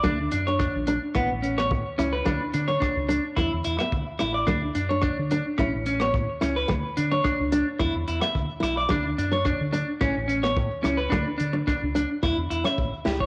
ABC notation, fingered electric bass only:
X:1
M:4/4
L:1/16
Q:"Swing 16ths" 1/4=108
K:D
V:1 name="Fingered electric bass" clef=bass
D,,2 F,,3 _B,,,2 z A,,, A,,,3 A,, z C,,2 | D,, z D,2 z C,,2 z E,, E,, E,, z D,, z A,,,2 | D,,2 F,,3 D,2 z A,,, A,,,3 A,, z C,,2 | D,, z D,2 z C,,2 z E,, E,, E,, z D,, z B,,,2 |
D,,2 F,,3 D,2 z A,,, A,,,3 A,, z C,,2 | D,, z D,2 z C,,2 z E,, E,, E,, z A,,, z C,,2 |]